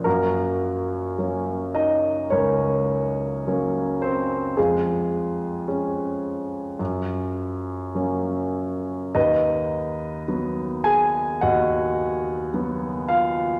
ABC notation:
X:1
M:4/4
L:1/8
Q:1/4=53
K:Gblyd
V:1 name="Grand piano"
[B,GB]3 [Ee] [DBd]3 [Cc] | [A,FA]8 | [^D=B^d]3 [Aa] [^Fd^f]3 [=F=f] |]
V:2 name="Grand piano" clef=bass
G,,2 [G,B,D]2 D,,2 [G,B,D]2 | F,,2 [A,D]2 G,,2 [G,B,D]2 | ^D,,2 [^F,=B,]2 D,,2 [F,B,]2 |]